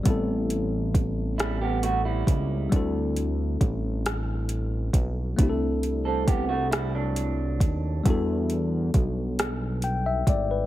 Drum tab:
HH |xxxxxx|xxxxxx|xxxxxx|xxxxxx|
SD |---r--|---r--|---r--|---r--|
BD |o-o--o|o-o--o|o-o--o|o-o--o|